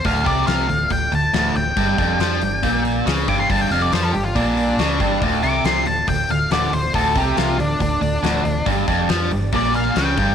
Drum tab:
HH |oooooooo|oooooooo|oooooooo|oooooooo|
SD |--o---o-|--o---o-|--o---o-|--o---o-|
BD |oo--o---|oo--o--o|o---o--o|o---o---|

HH |oooooooo|oooooooo|
SD |--o---o-|--o---o-|
BD |oo--o---|oo--o--o|